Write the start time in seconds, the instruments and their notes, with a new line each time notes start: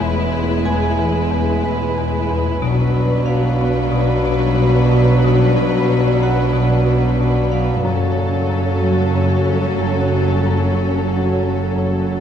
Already playing: double bass section E1, cello section E2, viola section G#3, violin section E4 B4, glass harmonica E4 B4 G#5, vibraphone C#5
0.01 marimba E2
0.34 marimba E2
0.65 marimba E2, vibraphone G#4 G#5
0.99 marimba E3
1.32 marimba E2
1.64 marimba E2, vibraphone B4 B5
1.97 marimba E2
2.30 marimba E2
2.60 double bass section B1, cello section B2, marimba B2, viola section F#3, violin section D4 B4, glass harmonica F#4 B4 D5
2.96 marimba B2
3.26 marimba B2, vibraphone F5
3.61 marimba B3
3.92 marimba B2
4.27 marimba B2
4.58 marimba B2
4.91 marimba B2
5.24 marimba B2
5.57 marimba B2
5.89 marimba B2
6.22 marimba B3, vibraphone F#4 F#5
6.53 marimba B2
6.86 marimba B2
7.20 marimba B2
7.52 marimba B2, vibraphone F5
7.82 double bass section F#1, cello section F#2, marimba F#2, viola section F#3, violin section C#4 A4, glass harmonica F#4 A4 C#5
8.18 marimba F#2
8.50 marimba F#2
8.83 marimba F#3
9.15 marimba F#2
9.49 marimba F#2
9.82 marimba F#2
10.14 marimba F#2
10.45 marimba F#2
11.11 marimba F#2, vibraphone F#4 F#5
11.43 marimba F#3
11.76 marimba F#2